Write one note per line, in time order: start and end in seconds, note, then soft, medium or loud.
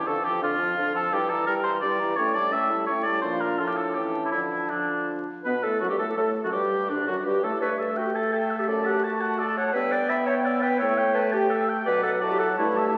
0.05 0.38 F2 medium
0.05 0.25 D3 soft
0.05 0.25 D4 soft
0.05 0.26 A4 medium
0.05 0.26 F5 soft
0.24 0.44 F3 soft
0.24 0.43 F4 soft
0.24 0.42 G4 medium
0.24 0.43 A5 soft
0.41 0.73 F2 medium
0.41 0.61 D3 soft
0.41 0.60 D4 soft
0.41 0.95 F4 medium
0.41 0.61 F5 soft
0.59 0.77 F3 soft
0.59 0.76 F4 soft
0.59 0.77 A5 soft
0.77 1.09 F2 medium
0.77 0.97 D3 soft
0.77 0.97 D4 soft
0.77 0.98 F5 soft
0.95 1.11 F3 soft
0.95 1.12 F4 soft
0.95 1.15 A4 medium
0.95 1.12 A5 soft
1.12 1.43 G2 medium
1.12 1.32 G3 soft
1.12 1.31 E4 soft
1.12 1.31 G4 medium
1.12 1.31 G5 soft
1.29 1.50 E3 soft
1.29 1.49 G4 soft
1.29 1.46 A4 medium
1.29 1.50 A#5 soft
1.47 1.78 G2 medium
1.47 1.66 G3 soft
1.47 1.65 E4 soft
1.47 1.55 A#4 medium
1.47 1.67 G5 soft
1.63 1.82 E3 soft
1.63 1.81 G4 soft
1.63 1.72 C5 medium
1.63 1.82 A#5 soft
1.81 2.13 G2 medium
1.81 2.01 G3 soft
1.81 2.00 E4 soft
1.81 2.18 D5 medium
1.81 2.01 G5 soft
1.99 2.17 E3 soft
1.99 2.15 G4 soft
1.99 2.17 A#5 soft
2.16 2.49 A2 soft
2.16 2.37 A3 soft
2.16 2.37 C#4 soft
2.16 2.34 C#5 medium
2.16 2.37 G5 soft
2.34 2.54 G3 soft
2.34 2.54 E4 soft
2.34 2.54 D5 medium
2.34 2.55 A5 soft
2.52 2.84 A2 soft
2.52 2.73 A3 soft
2.52 2.72 C#4 soft
2.52 2.86 E5 medium
2.52 2.72 G5 soft
2.70 2.88 G3 soft
2.70 2.87 E4 soft
2.70 2.88 A5 soft
2.86 3.19 A2 soft
2.86 3.07 A3 soft
2.86 3.07 C#4 soft
2.86 3.05 C#5 medium
2.86 3.08 G5 soft
3.03 3.23 G3 soft
3.03 3.22 E4 soft
3.03 3.21 D5 medium
3.03 3.23 A5 soft
3.22 3.61 A#2 soft
3.22 3.57 F3 soft
3.22 3.57 D4 soft
3.22 3.42 C5 medium
3.22 3.61 F5 soft
3.40 3.61 A#4 soft
3.59 3.95 A2 soft
3.59 3.98 F3 soft
3.59 3.97 D4 soft
3.59 3.70 F4 medium
3.59 3.96 A5 soft
3.68 3.78 G4 soft
3.77 3.96 A4 soft
3.94 4.35 A2 soft
3.94 4.33 E3 soft
3.94 4.32 C#4 soft
3.94 4.23 G4 soft
3.94 4.33 A5 soft
4.25 4.31 E4 soft
4.32 5.27 D3 soft
4.32 4.70 F3 soft
4.32 4.70 D4 soft
4.32 4.71 E4 soft
4.32 4.71 A5 soft
4.70 5.26 F3 soft
4.70 5.08 D4 soft
4.70 5.26 D4 soft
4.70 5.19 A5 soft
5.44 5.65 B2 medium
5.44 5.54 B3 medium
5.44 5.65 B4 medium
5.44 5.64 B4 medium
5.44 5.66 B4 medium
5.63 5.81 A2 soft
5.63 5.83 A3 soft
5.63 5.79 A4 soft
5.63 5.80 A4 medium
5.63 5.82 A4 medium
5.80 5.90 F#2 medium
5.80 5.90 F#3 medium
5.80 5.88 F#4 medium
5.80 5.89 F#4 soft
5.80 5.90 F#4 soft
5.89 5.95 G2 soft
5.89 5.99 G3 soft
5.89 5.98 G4 soft
5.89 5.94 G4 medium
5.89 6.00 G4 soft
5.98 6.07 A2 soft
5.98 6.16 A3 medium
5.98 6.17 A4 soft
5.98 6.07 A4 medium
5.98 6.17 A4 medium
6.16 6.30 A2 medium
6.16 6.43 A3 soft
6.16 6.47 A4 soft
6.16 6.30 A4 medium
6.16 6.44 A4 medium
6.44 6.55 F#2 soft
6.44 6.53 F#3 soft
6.44 6.51 F#4 soft
6.44 6.49 F#4 soft
6.44 6.54 F#4 soft
6.52 6.91 G2 soft
6.52 6.89 G3 soft
6.52 6.91 G4 medium
6.52 6.89 G4 medium
6.89 7.07 D2 medium
6.89 6.99 D3 soft
6.89 7.09 D4 medium
6.89 7.07 D4 medium
6.89 7.08 D4 soft
7.07 7.16 F#2 medium
7.07 7.16 F#3 soft
7.07 7.26 F#4 medium
7.07 7.16 F#4 soft
7.07 7.26 F#4 soft
7.25 7.44 G2 medium
7.25 7.34 G3 soft
7.25 7.45 G4 soft
7.25 7.45 G4 medium
7.25 7.32 G4 medium
7.43 7.60 A2 medium
7.43 7.53 A3 medium
7.43 7.61 A4 medium
7.43 7.60 A4 medium
7.43 7.62 A4 medium
7.61 7.91 G2 soft
7.61 9.70 A3 soft
7.61 7.70 B4 medium
7.61 7.80 C#5 soft
7.61 8.70 E5 soft
7.79 7.88 A4 soft
7.79 7.98 E5 soft
7.97 8.07 F#4 medium
7.97 8.17 G5 soft
8.06 8.13 G4 medium
8.14 8.32 A4 medium
8.14 8.34 A5 soft
8.32 8.61 A4 medium
8.32 8.52 G5 soft
8.51 8.68 E5 soft
8.59 8.69 G4 medium
8.67 8.97 F#2 medium
8.67 8.84 A4 medium
8.67 8.87 D5 soft
8.67 9.74 A5 soft
8.84 9.05 G4 medium
8.84 9.05 F#5 medium
9.04 9.40 F#4 medium
9.04 9.22 A5 medium
9.21 9.41 F#5 soft
9.38 9.56 A4 medium
9.38 9.59 D5 medium
9.57 9.75 C#5 medium
9.57 9.75 F#5 medium
9.73 10.04 G2 medium
9.73 10.82 B3 medium
9.73 9.93 B4 medium
9.73 9.93 E5 medium
9.73 11.89 G5 medium
9.92 10.10 D5 medium
9.92 10.11 G5 medium
10.09 10.26 E5 medium
10.09 10.30 B5 medium
10.26 10.35 C#5 medium
10.26 10.47 G5 soft
10.44 10.61 D5 medium
10.44 10.64 E5 medium
10.61 10.80 B4 medium
10.61 10.79 G5 medium
10.79 11.10 A2 medium
10.79 11.87 A3 medium
10.79 11.16 C#5 medium
10.79 10.99 E5 medium
10.98 11.17 G5 medium
11.14 11.33 B4 medium
11.14 11.34 A5 medium
11.33 11.49 G4 medium
11.33 11.52 G5 medium
11.49 11.68 A4 medium
11.49 11.70 E5 medium
11.69 11.85 G5 medium
11.85 12.16 B2 medium
11.85 12.60 F#3 medium
11.85 12.02 B4 medium
11.85 12.06 D5 medium
11.85 12.21 F#5 medium
12.03 12.11 A4 medium
12.03 12.20 F#5 medium
12.20 12.52 A2 medium
12.20 12.30 F#4 medium
12.20 12.40 D5 medium
12.20 12.98 A5 medium
12.31 12.39 G4 medium
12.39 12.48 A4 medium
12.39 12.57 F#5 medium
12.58 12.90 G2 medium
12.58 12.98 A3 medium
12.58 12.78 E4 medium
12.58 12.79 C#5 medium
12.76 12.95 G4 medium
12.76 12.94 E5 soft